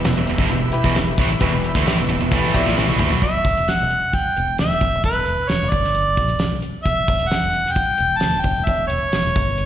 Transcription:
Already playing: E4 G4 B4 E5
0.04 E1 E2 B2, snare, closed hi-hat, shaker
0.15 E1 E2 B2, shaker
0.27 E1 E2 B2, closed hi-hat, shaker
0.38 G1 G2 D3, kick
0.49 E1 E2 B2, closed hi-hat, shaker
0.72 E4 G4 B4, closed hi-hat, shaker
0.83 E1 E2 B2, kick, closed hi-hat, shaker
0.95 E1 E2 B2, snare, closed hi-hat, shaker
1.06 shaker
1.17 A1 A2 E3, kick, closed hi-hat, shaker
1.29 muted overdriven electric guitar stroke, muted distorted electric guitar stroke, muted fingered electric bass stroke, closed hi-hat
1.40 E1 E2 B2 E4 G4 B4, kick, closed hi-hat, shaker
1.51 E1 E2 B2, shaker
1.63 closed hi-hat, shaker
1.74 D2 D3 A3, kick, closed hi-hat, shaker
1.85 A1 A2 E3, snare, closed hi-hat, shaker
1.98 E1 E2 B2, shaker
2.08 E1 E2 B2, closed hi-hat, shaker
2.19 E1 E2 B2, shaker
2.31 A1 A2 E3 A3, kick, closed hi-hat, shaker
2.43 snare, shaker
2.54 B1 B2 F#3 E4 G4 D5 E5, kick, closed hi-hat, shaker
2.65 A#1 A#2 F3, closed hi-hat, shaker
2.76 A1 A2 E3 B5, snare, shaker
2.87 B1 B2 F#3, high tom, shaker
2.99 D2 D3 A3, mid tom, shaker
3.10 B1 B2 F#3, floor tom, shaker
3.22 E1 E5, kick, closed hi-hat
3.45 G1, kick, closed hi-hat
3.57 E1, closed hi-hat
3.68 F#5, snare, closed hi-hat
3.81 E1
3.90 closed hi-hat
4.13 G5, kick, closed hi-hat
4.37 E1, closed hi-hat
4.58 D2 E5, snare, closed hi-hat
4.72 E1
4.81 G1, kick, closed hi-hat
4.95 E1
5.04 E1 B4, kick, closed hi-hat
5.26 E1, closed hi-hat
5.41 muted fingered electric bass stroke
5.48 E1 C#5, snare, closed hi-hat
5.63 E1
5.70 G1 D5, kick, closed hi-hat
5.84 snare
5.95 closed hi-hat
6.17 A#1, kick, closed hi-hat
6.29 E1, closed hi-hat
6.39 B1, snare, closed hi-hat
6.62 closed hi-hat
6.83 E1 E5, kick, closed hi-hat
7.08 G1, kick, closed hi-hat
7.20 E1, closed hi-hat
7.28 F#5, snare, closed hi-hat
7.43 E1
7.53 closed hi-hat
7.66 snare
7.72 G5, closed hi-hat
7.76 kick
7.98 E1, closed hi-hat
8.17 A5, closed hi-hat
8.21 D2, snare
8.34 E1
8.41 G1 G5, kick, closed hi-hat
8.58 E1
8.65 E1 E5, kick, closed hi-hat
8.87 E1 C#5, closed hi-hat
9.03 muted fingered electric bass stroke
9.12 E1, snare, closed hi-hat
9.25 E1
9.36 G1, kick, closed hi-hat
9.58 closed hi-hat

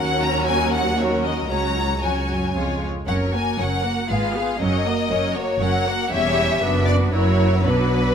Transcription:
Already playing: D#2 F#3 C#4 F#4 A#4 F#5
0.21 A#5
0.46 G#5
0.72 F#5
0.97 F#3 C#4 F#4 A#4 C#5
1.24 D#5
1.49 C#2 F#3 C#4 F#4 C#5 A#5
2.01 F2 F#3 C#4 F#4 C#5 G#5
2.28 F#2
2.54 C#2 F2 G#3 C#4 F4 C#5
3.06 F#1 F#2 F#3 C#4 A#4 C#5 F#5
3.33 A#3 F#4 A#4 G#5
3.58 F#1 F#2 F#3 C#4 A#4 C#5 F#5
3.84 A#3 F#4 A#4
4.09 G#1 G#2 G#3 F4 G#4 B4 F5
4.35 B3 F4 G#4
4.60 F#1 F#2 F#3 C#4 A#4 C#5 D#5
4.85 A#3 F#4 A#4
5.09 F#1 F#2 F#3 C#4 A#4 C#5
5.35 A#3 F#4 A#4 C#5
5.60 F#1 F#2 F#3 C#4 A#4 C#5 F#5
5.86 A#3 F#4 A#4
6.10 E1 E2 G3 C#4 G4 C#5 E5
6.61 F#1 F#2 B3 D4 F#4 B4
6.87 D5
7.12 F#1 F#2 F#3 E4 F#4 A#4 C#5
7.63 B1 B2 F#3 D4 F#4 B4

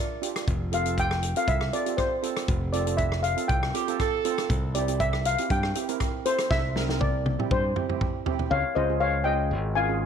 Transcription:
Already playing: D5
0.22 D4 F4 G4, closed hi-hat
0.36 cross-stick, closed hi-hat
0.48 F1, kick, closed hi-hat
0.72 C4 F4 A4 F5, closed hi-hat
0.85 C4 F4 A4, closed hi-hat
0.98 G5, kick, closed hi-hat
1.11 cross-stick
1.23 closed hi-hat
1.36 C4 F4 A4 F5, closed hi-hat
1.48 C2 E5, kick, closed hi-hat
1.61 cross-stick
1.73 C4 F4 A4 D5, closed hi-hat
1.86 C4 F4 G4, closed hi-hat
1.97 C5, kick, cross-stick, closed hi-hat
2.23 C4 F4 A4, closed hi-hat
2.37 cross-stick, closed hi-hat
2.48 F1, kick, closed hi-hat
2.73 C4 F4 A4 D5, closed hi-hat
2.87 C4 F4 A4, closed hi-hat
2.97 E5, kick, closed hi-hat
3.12 cross-stick
3.23 F5, closed hi-hat
3.37 C4 F4 A4, closed hi-hat
3.48 C2 G5, kick, closed hi-hat
3.63 cross-stick
3.74 C4 F4 G4 A4, closed hi-hat
3.88 C4 F4 A4, closed hi-hat
4.00 A4, kick, cross-stick, closed hi-hat
4.25 C4 F4 A4, closed hi-hat
4.38 cross-stick, closed hi-hat
4.50 C2, kick, closed hi-hat
4.75 C4 E4 G4 D5, closed hi-hat
4.88 C4 E4 G4, closed hi-hat
5.00 E5, kick, closed hi-hat
5.13 cross-stick
5.25 F5, closed hi-hat
5.38 C4 E4 G4, closed hi-hat
5.50 G2 G5, kick, closed hi-hat
5.63 cross-stick
5.75 C4 E4 G4, closed hi-hat
5.89 C4 E4 A#4, closed hi-hat
6.00 kick, cross-stick, closed hi-hat
6.25 C4 E4 A4 C5, closed hi-hat
6.39 cross-stick, closed hi-hat
6.51 C2 E5, kick, snare
6.76 C4 E4 A#4, snare
6.89 C4 E4 A#4, snare
7.01 D5, kick, high tom
7.26 high tom
7.39 C4 E4 G4, mid tom
7.51 G2 C5, kick, mid tom
7.76 C4 E4 G4, mid tom
7.89 C4 E4 G4, mid tom
8.01 kick, mid tom
8.26 C4 E4 G4, floor tom
8.39 floor tom
8.51 C#2 C#5 F5
8.75 C#2 C#4 F4 G#4 C5 D#5
8.90 C#4 F4 G#4
9.00 C#5 F5
9.24 C#4 F4 G#4 D#5 G5
9.51 G#1
9.75 C#4 F4 G#4 F5 G#5
9.89 C#4 F4 G#4

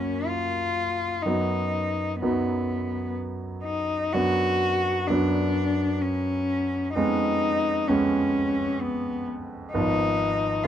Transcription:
Already playing: F#2 A#3 C#4 F#4
0.27 F4
1.22 F#2 B3 D#4
1.26 F#3 D#4
2.21 F#2 F#3 B3 D#4
3.64 D#4
4.13 F#2 F#3 B3 D4 F#4
5.07 F#2 F#3 B3 D4
6.01 C#4
6.94 F2 G#3 B3 C#4 D#4
7.88 F2 G#3 B3 C#4
8.81 B3
9.73 G#1 F3 B3 D#4 F4
10.63 F4

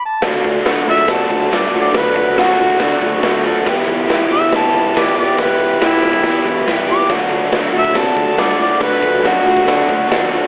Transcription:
0.05 A5
0.22 D2 D3 F#3 A3, kick, snare, crash
0.26 D4 F#4
0.44 D2, kick
0.64 D2 D3 F#3 A3 D4 F#4, snare, open hi-hat
0.87 D2 D4 F#4
0.91 A3 E5
0.98 kick
1.08 C3 F#3 A3 D4 F#4, kick, snare, open hi-hat
1.12 A5
1.30 D2, kick
1.51 G2 F#3 A3 D4 F#4 D5, snare, open hi-hat
1.74 A2 A3 D4 F#4
1.81 D5
1.92 D2 D3 F#3 A3 D4 F#4, kick, snare, open hi-hat
1.97 B4
2.16 D2, kick
2.37 F#2 D3 F#3 A3 D4 F#4, snare, open hi-hat
2.59 D2 A3 D4 F#4
2.70 kick
2.79 D3 F#3 A3 D4 F#4, kick, snare, open hi-hat
3.02 D2, kick
3.23 D2 F#3 A3 D4 F#4, snare, open hi-hat
3.45 A3 D4 F#4
3.66 E1 E3 B3 E4 G4, kick, snare, crash
3.88 E1, kick
4.08 E1 E3 B3 E4, snare, open hi-hat
4.12 G4
4.30 E1 B3 E4 G4 E5
4.42 kick
4.52 D2 E3 B3 E4, kick, snare, open hi-hat
4.56 G4 A5
4.74 E1, kick
4.94 A1 E3 B3 E4 G4, snare, open hi-hat
4.99 D5
5.16 B1 B3 E4 G4 D5
5.38 E1 E3 B3 E4 G4 B4, kick, snare, open hi-hat
5.59 E1, kick
5.80 G1 E3 B3 E4 G4, snare, open hi-hat
5.85 E4
6.02 E1 B3 E4 G4
6.13 kick
6.23 E2 E3 B3 E4 G4, kick, snare, open hi-hat
6.45 E1, kick
6.66 C2 E3 B3 E4 G4, snare, open hi-hat
6.87 B3 E4 G4 D6
7.09 D2 D3 F#3 A3 D4 F#4, kick, snare, crash
7.30 D2, kick
7.52 D2 D3 F#3 A3 D4 F#4, snare, open hi-hat
7.73 D2 A3 D4 F#4
7.79 E5
7.84 kick
7.94 C3 F#3 A3 D4 F#4 A5, kick, snare, open hi-hat
8.16 D2, kick
8.36 G2 F#3 A3 D4 F#4 D5, snare, open hi-hat
8.59 A2 A3 D4 F#4 D5
8.79 D2 D3 F#3 A3 D4 F#4 B4, kick, snare, open hi-hat
9.03 D2, kick
9.23 F#2 D3 F#3 A3 D4 F#4, snare, open hi-hat
9.27 F#4
9.43 D2 A3 D4 F#4
9.57 kick
9.64 D3 F#3 A3 D4 F#4, kick, open hi-hat
9.68 snare
9.89 D2, kick
10.08 D#2 F#3 A3 D4 F#4, snare, open hi-hat
10.29 A3 D4 F#4

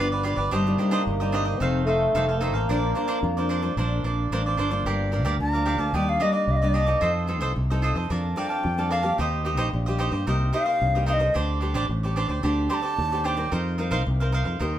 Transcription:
Already playing: G1
0.00 D3 F3 B3 D4
0.12 G4 B4 D5
0.23 F3 B3 D4 F4 G4 B4 D5
0.36 G1 G4 B4 D5
0.51 G1 C3 G3 A#3 C4 D4 D#4 G4 C5 D#5
0.67 G3 C4 D#4
0.78 G3 C4 D4 D#4 G4 C5 D#5
0.91 D4 G4 C5 D#5
1.07 G1 C3
1.20 G3 C4 D#4 G4 C5 D#5
1.32 D4 G4 C5 D#5
1.45 G4 C5 D#5
1.59 F1 F2 D#3 A3 C4 D#4 A4 C5 F5
1.85 A3 D#4 A4 C5 F5
2.15 F1 C3 D#3 A3 C4 D#4 A4 C5 F5
2.28 A4 C5 F5
2.40 D#3 A3 A#3 C4 D#4 A4 C5 F5
2.54 A1 A4 C5 F5
2.69 A#1 A#2 F3 C4 D4 A#4 C5 D5
2.95 F3 C4 D4 A#4 C5 D5
3.08 D4 A#4 C5 D5
3.23 F2 F3
3.37 F3 C4 D4 A#4 C5 D5
3.49 D4 A#4 C5 D5
3.62 F3 C4 D4 A#4 C5 D5
3.77 A#1 A#2 F3 C4 D4 A#4 C5 D5
4.03 A#1 D4 A#4 C5 D5
4.31 A1 F3 C4 D4 A#4 C5 D5
4.46 A#4 C5 D5
4.57 G1 F3 C4 D4 A#4 C5 D5
4.71 F3 A#3 D4 A#4 C5 D5
4.85 G1 G2 G4 A#4 D5 F5
5.12 F3 A#3 D4 G4 A#4 D5 F5
5.24 D2 G4 A#4 D5 F5
5.39 D2 D3 A#5
5.53 F3 A#3 D4 A#4 D5 F5
5.65 G4 A#4 D5 F5
5.78 D2 A#4 D5 F5 A5
5.93 D#2 D#3 G3 A#3 D4 G4 D5 D#5 G5
6.09 F5
6.20 G3 A#3 D4 G4 D5 D#5
6.32 G4 D5 D#5
6.47 C2 A#2 F5
6.56 D#5
6.62 G3 A#3 D4 G4 D5 D#5
6.68 D5
6.73 D4 G4 D5 D#5
6.86 C4 D#4 G4 A4 D5 D#5
7.01 F2 F3 F4 A4 C5 D#5
7.27 C4 D#4 F4 A4 C5 D#5
7.41 C2 F4 A4 C5 D#5
7.56 C2 C3
7.70 C4 D#4 A4 C5 D#5
7.82 F4 A4 C5 D#5
7.95 F2 A4 C5 D#5
8.10 F2 F3 C4 D4 A4 A#4 D5 F5 A5
8.36 C4 D4 A4 A#4 D5 F5 G5 A5
8.49 D5 F5 A5
8.63 F2 F3
8.78 C4 D4 A4 D5 F5 A5
8.91 A#4 D5 F5 A5
9.02 A#3 C4 G4 D5 F5 A5
9.18 D#2 D#3 D#4 G4 C5 D#5
9.45 A#3 C4 D#4 G4 C5 D#5
9.57 A#1 D#4 G4 C5 D#5
9.73 A#1 A#2
9.86 A#3 C4 G4 C5 D#5
9.99 D#4 G4 C5 D#5
10.11 G2 G4 C5 D#5
10.27 C2 C3 A#3 D#4 G4 A#4 C5 D#5
10.53 A#3 D#4 G4 A#4 C5 D#5 F5
10.66 A#4 C5 D#5
10.81 C2 G2
10.95 A#3 D#4 G4 A#4 C5 D#5
11.06 D#4 A#4 C5 D#5 F5
11.13 D#5
11.19 C4 G4 A4 A#4 C5 D#5
11.34 D2 D3 D4 G4 C5 D5
11.61 C4 D4 G4 A4 C5 D5
11.74 A1 D4 G4 C5 D5
11.89 A1 A2
12.03 C4 G4 A4 C5 D5
12.16 D4 G4 C5 D5
12.28 D2 G4 C5 D5
12.43 D2 D3 C4 D4 G4 A4 C5 D5
12.69 C4 D4 G4 A4 C5 D5 C6
12.74 A5
12.82 G4 C5 D5
12.98 D#2 A2
13.12 C4 G4 A4 C5 D5
13.24 D4 G4 C5 D5 G5
13.36 C4 D#4 G4 A#4 C5 D5
13.52 F2 F3 D#4 A#4 C5 F5
13.78 C4 D#4 A#4 C5 F5
13.91 C2 D#4 A#4 C5 F5
14.06 C2 C3
14.20 C4 D#4 A#4 C5 F5
14.32 D#4 A#4 C5 F5
14.44 F2 A#4 C5 F5
14.59 D#2 D#3 C4 D#4 G4 A#4 C5 D#5

